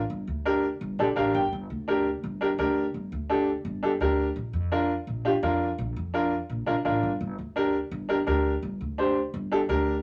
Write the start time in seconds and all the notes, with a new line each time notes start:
0.10 G1
0.27 D2
0.45 D4 G4 A#4
0.81 G1
0.99 A#1 D4 G4 A4 D5
1.16 A1 D4 G4 A#4 F5
1.34 G1 G5
1.52 G1
1.70 D2
1.88 D4 G4 A#4
2.24 G1
2.41 D4 G4 A#4
2.58 D2 D4 G4 A#4
2.94 G1
3.12 D2
3.30 D4 G4 A4
3.65 G1
3.83 D4 G4 A4
4.00 D2 D4 G4 A#4
4.36 A#1
4.53 F2
4.72 D4 F4 A#4
5.07 A#1
5.25 D4 F4 G4
5.43 F2 D4 F4 A#4
5.78 A#1
5.96 F2
6.14 D4 F4 A#4
6.50 A#1
6.66 A#1 D4 F4 A#4
6.85 A1 D4 F4 A#4
7.03 G1
7.21 G1
7.39 D2
7.56 D4 G4 A#4
7.91 G1
8.09 D4 G4 A#4
8.27 D2 D4 G4 A#4
8.62 G1
8.81 D2
8.98 D4 G4 C5
9.34 G1
9.52 D4 G4 A4
9.69 D2 D4 G4 A#4